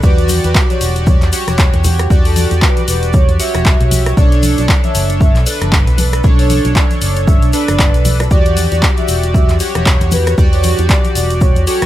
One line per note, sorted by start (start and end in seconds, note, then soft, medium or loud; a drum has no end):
0.03 0.39 E2 loud
0.03 1.30 F#4 loud
0.03 1.30 G4 medium
0.03 0.29 B4 loud
0.03 1.30 D5 loud
0.03 kick loud
0.03 shaker medium
0.18 closed hi-hat medium
0.18 shaker soft
0.29 open hi-hat loud
0.29 high conga loud
0.29 shaker medium
0.44 0.53 E2 loud
0.44 0.60 B4 medium
0.44 closed hi-hat medium
0.44 high bongo medium
0.44 shaker soft
0.55 kick loud
0.55 clap loud
0.55 shaker medium
0.70 0.95 C#5 loud
0.70 closed hi-hat soft
0.70 high conga medium
0.70 shaker soft
0.81 1.22 E1 medium
0.81 open hi-hat loud
0.81 shaker medium
0.96 closed hi-hat medium
0.96 high bongo soft
0.96 shaker soft
1.07 1.25 C#5 medium
1.07 kick loud
1.07 high conga loud
1.07 shaker medium
1.22 1.30 E2 medium
1.22 clap soft
1.22 closed hi-hat soft
1.22 shaker soft
1.33 2.08 F#4 medium
1.33 2.08 G4 medium
1.33 2.08 C#5 medium
1.33 open hi-hat loud
1.33 shaker medium
1.47 1.74 E1 medium
1.47 cross-stick medium
1.47 closed hi-hat medium
1.47 high conga medium
1.47 shaker soft
1.58 kick loud
1.58 clap loud
1.58 shaker medium
1.73 2.07 E2 medium
1.73 closed hi-hat medium
1.73 low conga medium
1.73 shaker soft
1.84 2.10 G4 medium
1.84 open hi-hat loud
1.84 high bongo medium
1.84 high conga loud
1.84 low conga loud
1.84 shaker loud
1.99 cross-stick medium
1.99 closed hi-hat medium
1.99 shaker soft
2.10 2.46 E2 loud
2.10 3.37 F#4 medium
2.10 3.37 G4 medium
2.10 3.37 D5 loud
2.10 kick loud
2.10 shaker medium
2.25 2.51 A4 loud
2.25 open hi-hat medium
2.25 shaker soft
2.36 open hi-hat loud
2.36 high conga loud
2.36 shaker medium
2.51 2.60 E2 medium
2.51 closed hi-hat medium
2.51 high bongo medium
2.51 shaker soft
2.62 2.80 B4 medium
2.62 kick loud
2.62 clap loud
2.62 shaker medium
2.77 closed hi-hat soft
2.77 high conga medium
2.77 shaker soft
2.88 3.29 E1 medium
2.88 3.06 B4 medium
2.88 open hi-hat loud
2.88 shaker medium
3.03 closed hi-hat medium
3.03 shaker soft
3.13 3.32 C#5 medium
3.13 kick loud
3.13 high conga loud
3.13 shaker medium
3.29 3.37 E2 medium
3.29 closed hi-hat soft
3.29 shaker soft
3.39 4.15 F#4 medium
3.39 4.15 G4 medium
3.39 4.15 C#5 medium
3.39 4.09 E5 loud
3.39 open hi-hat loud
3.39 shaker loud
3.55 3.74 E1 medium
3.55 cross-stick medium
3.55 closed hi-hat medium
3.55 high bongo medium
3.55 high conga medium
3.55 shaker soft
3.66 kick loud
3.66 clap loud
3.66 shaker medium
3.81 4.13 B1 loud
3.81 closed hi-hat medium
3.81 low conga medium
3.81 shaker soft
3.91 open hi-hat loud
3.91 high conga medium
3.91 low conga medium
3.91 shaker loud
4.06 cross-stick medium
4.06 closed hi-hat medium
4.06 high bongo medium
4.06 shaker soft
4.17 4.53 B1 loud
4.17 5.44 D4 loud
4.17 5.44 A4 medium
4.17 5.44 C#5 loud
4.17 4.43 D5 loud
4.17 kick loud
4.17 shaker medium
4.32 closed hi-hat medium
4.32 shaker soft
4.43 open hi-hat loud
4.43 high conga loud
4.43 shaker medium
4.58 4.67 B1 medium
4.58 4.74 D5 medium
4.58 closed hi-hat medium
4.58 high bongo medium
4.58 shaker soft
4.69 kick loud
4.69 clap loud
4.69 shaker medium
4.84 5.09 E5 loud
4.84 closed hi-hat soft
4.84 high conga medium
4.84 shaker soft
4.95 5.36 F#1 medium
4.95 open hi-hat loud
4.95 shaker medium
5.10 closed hi-hat medium
5.10 high bongo soft
5.10 shaker soft
5.20 5.39 E5 medium
5.20 kick loud
5.20 high conga medium
5.20 shaker soft
5.36 5.44 B1 medium
5.36 clap soft
5.36 closed hi-hat soft
5.36 shaker soft
5.46 6.21 D4 medium
5.46 6.22 A4 medium
5.46 6.22 B4 medium
5.46 open hi-hat loud
5.46 shaker medium
5.61 5.87 F#1 medium
5.61 cross-stick medium
5.61 closed hi-hat medium
5.61 high conga medium
5.61 shaker soft
5.72 kick loud
5.72 clap loud
5.72 shaker soft
5.87 6.20 B1 medium
5.87 closed hi-hat medium
5.87 low conga medium
5.87 shaker soft
5.97 6.24 B4 loud
5.97 open hi-hat loud
5.97 high bongo soft
5.97 high conga medium
5.97 low conga medium
5.97 shaker medium
6.13 cross-stick medium
6.13 closed hi-hat medium
6.13 shaker soft
6.24 6.60 B1 loud
6.24 7.51 D4 medium
6.24 7.51 A4 medium
6.24 7.51 C#5 loud
6.24 kick loud
6.24 shaker soft
6.39 6.65 C#5 loud
6.39 open hi-hat medium
6.39 shaker soft
6.50 open hi-hat loud
6.50 high conga loud
6.50 shaker medium
6.65 6.73 B1 loud
6.65 closed hi-hat medium
6.65 high bongo medium
6.65 shaker soft
6.76 6.94 D5 medium
6.76 kick loud
6.76 clap loud
6.76 shaker soft
6.90 closed hi-hat soft
6.90 high conga medium
6.90 shaker soft
7.02 7.43 F#1 medium
7.02 7.20 D5 medium
7.02 open hi-hat loud
7.02 shaker medium
7.16 closed hi-hat medium
7.16 shaker soft
7.27 7.46 E5 medium
7.27 kick loud
7.27 high conga medium
7.27 shaker medium
7.42 7.51 B1 medium
7.42 closed hi-hat soft
7.42 shaker soft
7.53 8.28 D4 medium
7.53 8.28 A4 medium
7.53 8.28 B4 medium
7.53 8.22 D5 loud
7.53 open hi-hat loud
7.53 shaker medium
7.68 7.94 F#1 medium
7.68 cross-stick medium
7.68 closed hi-hat medium
7.68 high bongo medium
7.68 high conga medium
7.68 shaker soft
7.79 kick loud
7.79 clap loud
7.79 shaker soft
7.94 8.27 B1 medium
7.94 closed hi-hat medium
7.94 low conga medium
7.94 shaker soft
8.05 open hi-hat loud
8.05 high conga medium
8.05 low conga medium
8.05 shaker medium
8.20 cross-stick medium
8.20 closed hi-hat medium
8.20 high bongo medium
8.20 shaker soft
8.31 8.67 E2 loud
8.31 9.58 F#4 loud
8.31 9.58 G4 medium
8.31 8.56 D5 loud
8.31 9.58 D5 loud
8.31 kick loud
8.31 shaker medium
8.46 closed hi-hat medium
8.46 shaker soft
8.57 open hi-hat loud
8.57 high conga medium
8.57 shaker medium
8.72 8.80 E2 loud
8.72 8.87 D5 medium
8.72 closed hi-hat medium
8.72 high bongo medium
8.72 shaker soft
8.82 kick loud
8.82 clap loud
8.82 shaker medium
8.97 9.23 E5 loud
8.97 closed hi-hat soft
8.97 high conga medium
8.97 shaker soft
9.08 9.49 E1 medium
9.08 open hi-hat loud
9.08 shaker medium
9.23 closed hi-hat medium
9.23 high bongo soft
9.23 shaker soft
9.34 9.53 E5 medium
9.34 kick loud
9.34 high conga medium
9.34 shaker medium
9.49 9.58 E2 loud
9.49 clap soft
9.49 closed hi-hat soft
9.49 shaker soft
9.60 10.35 F#4 medium
9.60 10.35 G4 medium
9.60 10.35 C#5 medium
9.60 open hi-hat loud
9.60 shaker medium
9.75 10.01 E1 medium
9.75 cross-stick medium
9.75 closed hi-hat medium
9.75 high conga medium
9.75 shaker soft
9.86 kick loud
9.86 clap loud
9.86 shaker medium
10.01 10.34 E2 medium
10.01 closed hi-hat medium
10.01 low conga medium
10.01 shaker soft
10.11 10.37 B4 loud
10.11 open hi-hat loud
10.11 high bongo medium
10.11 high conga medium
10.11 low conga medium
10.11 shaker medium
10.27 cross-stick medium
10.27 closed hi-hat medium
10.27 shaker soft
10.38 10.73 E2 loud
10.38 11.64 F#4 loud
10.38 11.65 G4 medium
10.38 11.65 D5 loud
10.38 kick loud
10.38 shaker soft
10.53 10.78 C#5 loud
10.53 open hi-hat medium
10.53 shaker soft
10.63 open hi-hat loud
10.63 high conga loud
10.63 shaker medium
10.78 10.87 E2 loud
10.78 closed hi-hat medium
10.78 high bongo medium
10.78 shaker soft
10.89 11.08 D5 medium
10.89 kick loud
10.89 clap loud
10.89 shaker medium
11.04 closed hi-hat soft
11.04 high conga medium
11.04 shaker soft
11.15 11.56 E1 medium
11.15 11.34 D5 medium
11.15 open hi-hat loud
11.15 shaker loud
11.30 closed hi-hat medium
11.30 shaker soft
11.41 11.60 C#5 medium
11.41 kick loud
11.41 high conga medium
11.41 shaker medium
11.56 11.65 E2 loud
11.56 closed hi-hat soft
11.56 shaker soft
11.67 11.86 F#4 loud
11.67 11.86 G4 medium
11.67 11.86 A4 loud
11.67 11.86 C#5 loud
11.67 open hi-hat loud
11.67 shaker medium
11.82 11.86 E1 medium
11.82 cross-stick medium
11.82 closed hi-hat medium
11.82 high bongo medium
11.82 high conga medium
11.82 shaker soft